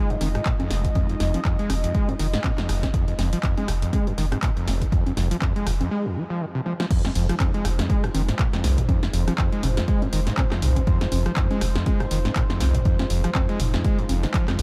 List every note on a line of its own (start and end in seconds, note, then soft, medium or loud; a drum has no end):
0.00 0.12 G#3 loud
0.00 5.87 G#3 medium
0.00 5.87 D#4 medium
0.00 5.87 F4 medium
0.00 5.90 D#5 medium
0.10 0.16 F2 loud
0.10 closed hi-hat soft
0.21 0.37 F1 medium
0.21 0.29 D#3 medium
0.21 snare soft
0.21 open hi-hat loud
0.21 high conga medium
0.35 0.41 G#2 medium
0.35 cross-stick medium
0.35 closed hi-hat soft
0.46 0.54 A#2 medium
0.46 kick loud
0.46 clap loud
0.46 closed hi-hat soft
0.60 0.72 F2 medium
0.60 closed hi-hat soft
0.60 high conga medium
0.71 0.87 F1 medium
0.71 0.86 F1 loud
0.71 snare medium
0.71 open hi-hat loud
0.85 0.91 F2 medium
0.85 kick medium
0.85 closed hi-hat soft
0.95 1.07 F2 loud
0.95 kick loud
0.95 closed hi-hat medium
0.95 high conga medium
1.09 1.15 F2 medium
1.09 closed hi-hat soft
1.20 1.36 F1 loud
1.20 1.32 F2 loud
1.20 snare medium
1.20 open hi-hat loud
1.34 1.40 F3 loud
1.34 closed hi-hat medium
1.34 high conga medium
1.45 1.57 F2 loud
1.45 kick loud
1.45 clap loud
1.45 closed hi-hat soft
1.59 1.71 G#3 medium
1.59 closed hi-hat soft
1.70 1.74 F1 medium
1.70 1.86 F1 loud
1.70 cross-stick medium
1.70 open hi-hat loud
1.70 high conga medium
1.84 1.93 F2 medium
1.84 closed hi-hat medium
1.95 2.10 G#3 loud
1.95 kick loud
1.95 closed hi-hat medium
2.09 2.15 F2 loud
2.09 closed hi-hat soft
2.09 high conga medium
2.19 2.36 F1 medium
2.19 2.27 D#3 medium
2.19 snare soft
2.19 open hi-hat loud
2.33 2.39 G#2 medium
2.33 snare medium
2.33 closed hi-hat medium
2.44 2.52 A#2 medium
2.44 kick loud
2.44 clap loud
2.44 closed hi-hat medium
2.44 high conga medium
2.58 2.71 F2 medium
2.58 snare medium
2.58 clap soft
2.58 closed hi-hat soft
2.69 2.85 F1 medium
2.69 2.85 F1 loud
2.69 cross-stick medium
2.69 open hi-hat loud
2.83 2.89 F2 medium
2.83 kick medium
2.83 snare medium
2.83 closed hi-hat medium
2.83 high conga medium
2.94 3.05 F2 loud
2.94 kick loud
2.94 closed hi-hat medium
3.08 3.14 F2 medium
3.08 closed hi-hat soft
3.19 3.35 F1 loud
3.19 3.30 F2 loud
3.19 snare medium
3.19 open hi-hat loud
3.19 high conga medium
3.33 3.39 F3 loud
3.33 closed hi-hat medium
3.43 3.55 F2 loud
3.43 kick loud
3.43 clap loud
3.43 closed hi-hat soft
3.57 3.70 G#3 medium
3.57 closed hi-hat soft
3.57 high conga medium
3.68 3.73 F1 loud
3.68 3.84 F1 loud
3.68 cross-stick medium
3.68 open hi-hat loud
3.82 3.91 F2 medium
3.82 closed hi-hat medium
3.93 4.09 G#3 loud
3.93 kick loud
3.93 closed hi-hat medium
3.93 high conga medium
4.07 4.13 F2 loud
4.07 closed hi-hat soft
4.18 4.34 F1 medium
4.18 4.26 D#3 medium
4.18 snare soft
4.18 open hi-hat loud
4.32 4.38 G#2 medium
4.32 cross-stick medium
4.32 closed hi-hat medium
4.32 high conga medium
4.43 4.50 A#2 medium
4.43 kick loud
4.43 clap loud
4.43 closed hi-hat medium
4.57 4.69 F2 medium
4.57 closed hi-hat soft
4.67 4.83 F1 loud
4.67 4.84 F1 medium
4.67 snare medium
4.67 open hi-hat loud
4.67 high conga medium
4.81 4.87 F2 medium
4.81 kick medium
4.81 closed hi-hat medium
4.92 5.04 F2 loud
4.92 kick loud
4.92 closed hi-hat medium
5.06 5.12 F2 medium
5.06 closed hi-hat soft
5.06 high conga medium
5.17 5.33 F1 loud
5.17 5.29 F2 loud
5.17 snare medium
5.17 open hi-hat loud
5.31 5.37 F3 loud
5.31 closed hi-hat medium
5.42 5.53 F2 loud
5.42 kick loud
5.42 clap loud
5.42 closed hi-hat medium
5.42 high conga medium
5.56 5.68 G#3 medium
5.56 closed hi-hat soft
5.66 5.71 F1 loud
5.66 5.83 F1 loud
5.66 cross-stick medium
5.66 open hi-hat loud
5.81 5.89 F2 medium
5.81 closed hi-hat medium
5.81 high conga medium
5.91 6.07 G#3 loud
6.05 6.18 F2 loud
6.16 6.24 F3 loud
6.30 6.42 F3 medium
6.41 6.46 D#3 medium
6.55 6.61 C3 loud
6.66 6.73 F3 medium
6.66 high tom medium
6.80 6.86 F3 loud
6.80 snare medium
6.90 7.02 F2 loud
6.90 14.62 G#3 medium
6.90 14.62 D#4 medium
6.90 14.62 F4 medium
6.90 14.62 C5 medium
6.90 kick loud
6.90 closed hi-hat medium
6.90 crash loud
7.04 7.10 F2 medium
7.04 snare medium
7.04 closed hi-hat soft
7.04 high conga medium
7.15 7.32 F1 loud
7.15 7.27 F2 loud
7.15 open hi-hat loud
7.29 7.35 F3 loud
7.29 cross-stick medium
7.29 closed hi-hat medium
7.40 7.52 F2 loud
7.40 kick loud
7.40 clap loud
7.40 closed hi-hat medium
7.40 high conga medium
7.54 7.66 G#3 medium
7.54 closed hi-hat soft
7.65 7.81 F1 loud
7.65 7.70 F1 loud
7.65 cross-stick medium
7.65 open hi-hat loud
7.79 7.88 F2 medium
7.79 snare medium
7.79 closed hi-hat medium
7.79 high conga medium
7.90 8.05 G#3 loud
7.90 kick loud
7.90 closed hi-hat medium
8.04 8.10 F2 loud
8.04 cross-stick medium
8.04 closed hi-hat soft
8.14 8.31 F1 medium
8.14 8.22 D#3 medium
8.14 open hi-hat loud
8.14 high conga medium
8.28 8.34 G#2 medium
8.28 snare medium
8.28 closed hi-hat medium
8.39 8.47 A#2 medium
8.39 kick loud
8.39 clap loud
8.39 closed hi-hat medium
8.53 8.65 F2 medium
8.53 snare medium
8.53 closed hi-hat soft
8.53 high conga medium
8.64 8.79 F1 loud
8.64 8.80 C2 loud
8.64 snare medium
8.64 open hi-hat loud
8.78 8.84 F2 medium
8.78 kick medium
8.78 closed hi-hat medium
8.78 mid tom medium
8.89 9.00 F2 loud
8.89 kick loud
8.89 closed hi-hat medium
8.89 high conga medium
9.03 9.09 F2 medium
9.03 snare medium
9.03 closed hi-hat soft
9.13 9.30 F1 loud
9.13 9.25 F2 loud
9.13 open hi-hat loud
9.27 9.34 F3 loud
9.27 cross-stick medium
9.27 closed hi-hat medium
9.27 high conga medium
9.38 9.50 F2 loud
9.38 kick loud
9.38 clap loud
9.38 closed hi-hat medium
9.52 9.65 G#3 medium
9.52 closed hi-hat soft
9.63 9.68 F1 loud
9.63 9.79 F1 loud
9.63 mid tom medium
9.63 open hi-hat loud
9.63 high conga medium
9.77 9.86 F2 medium
9.77 snare medium
9.77 closed hi-hat medium
9.88 10.04 G#3 loud
9.88 kick loud
9.88 closed hi-hat medium
10.02 10.08 F2 loud
10.02 closed hi-hat soft
10.02 high conga medium
10.13 10.29 F1 medium
10.13 10.21 D#3 medium
10.13 open hi-hat loud
10.27 10.33 G#2 medium
10.27 snare medium
10.27 closed hi-hat medium
10.38 10.45 A#2 medium
10.38 kick loud
10.38 clap loud
10.38 closed hi-hat medium
10.38 high conga medium
10.52 10.64 F2 medium
10.52 cross-stick medium
10.52 snare medium
10.52 clap soft
10.52 closed hi-hat soft
10.62 10.78 F1 loud
10.62 10.79 C2 loud
10.62 mid tom medium
10.62 open hi-hat loud
10.76 10.82 F2 medium
10.76 kick medium
10.76 closed hi-hat medium
10.76 high conga medium
10.87 10.99 F2 loud
10.87 kick loud
10.87 closed hi-hat soft
11.01 11.07 F2 medium
11.01 snare medium
11.01 closed hi-hat soft
11.12 11.28 F1 loud
11.12 11.24 F2 medium
11.12 open hi-hat loud
11.12 high conga medium
11.26 11.32 F3 loud
11.26 cross-stick medium
11.26 closed hi-hat medium
11.36 11.48 F2 loud
11.36 kick loud
11.36 clap loud
11.36 closed hi-hat soft
11.51 11.63 G#3 medium
11.51 closed hi-hat soft
11.51 high conga medium
11.61 11.78 F1 loud
11.61 11.66 F1 loud
11.61 cross-stick medium
11.61 open hi-hat loud
11.76 11.84 F2 medium
11.76 snare medium
11.76 closed hi-hat medium
11.86 12.02 G#3 loud
11.86 kick loud
11.86 closed hi-hat medium
11.86 high conga medium
12.00 12.06 F2 loud
12.00 cross-stick medium
12.00 closed hi-hat soft
12.11 12.27 F1 medium
12.11 12.19 D#3 medium
12.11 open hi-hat loud
12.25 12.31 G#2 medium
12.25 snare medium
12.25 closed hi-hat medium
12.25 high conga medium
12.36 12.44 A#2 medium
12.36 kick loud
12.36 clap loud
12.36 closed hi-hat medium
12.50 12.62 F2 medium
12.50 snare medium
12.50 closed hi-hat soft
12.60 12.76 F1 loud
12.60 12.77 C2 loud
12.60 snare medium
12.60 open hi-hat loud
12.60 high conga medium
12.75 12.81 F2 medium
12.75 kick medium
12.75 closed hi-hat medium
12.75 mid tom medium
12.85 12.97 F2 loud
12.85 kick loud
12.85 closed hi-hat medium
12.99 13.05 F2 medium
12.99 snare medium
12.99 closed hi-hat soft
12.99 high conga medium
13.10 13.27 F1 loud
13.10 13.22 F2 loud
13.10 open hi-hat loud
13.24 13.30 F3 loud
13.24 cross-stick medium
13.24 closed hi-hat medium
13.35 13.47 F2 loud
13.35 kick loud
13.35 clap loud
13.35 closed hi-hat soft
13.35 high conga medium
13.49 13.61 G#3 medium
13.49 closed hi-hat soft
13.60 13.76 F1 loud
13.60 13.64 F1 medium
13.60 mid tom medium
13.60 open hi-hat loud
13.74 13.83 F2 medium
13.74 snare medium
13.74 closed hi-hat soft
13.74 high conga medium
13.85 14.00 G#3 loud
13.85 kick loud
13.85 closed hi-hat medium
13.99 14.05 F2 loud
13.99 closed hi-hat soft
14.09 14.26 F1 medium
14.09 14.25 F2 medium
14.09 open hi-hat loud
14.09 high conga medium
14.23 14.27 F3 medium
14.23 snare medium
14.23 closed hi-hat soft
14.34 14.46 F3 medium
14.34 kick loud
14.34 clap loud
14.34 closed hi-hat medium
14.48 14.57 F2 loud
14.48 cross-stick medium
14.48 snare medium
14.48 clap soft
14.48 closed hi-hat soft
14.48 high conga medium
14.59 14.62 C2 loud
14.59 14.62 F2 medium
14.59 mid tom medium
14.59 open hi-hat loud